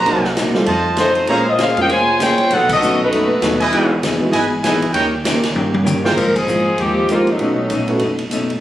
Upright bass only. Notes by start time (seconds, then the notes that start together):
0.05 C2
0.54 muted upright bass stroke
0.67 F2
1.27 A#1
1.76 F2
1.89 F1
2.38 muted upright bass stroke
2.50 B1
3.11 F#1
3.42 D#2
3.72 E1
4.03 D#2
4.33 G#1
4.82 C#2
4.93 D#2
5.55 G2
6.17 G#2
6.78 D#2
7.39 B1
7.69 A#1
8.01 F#1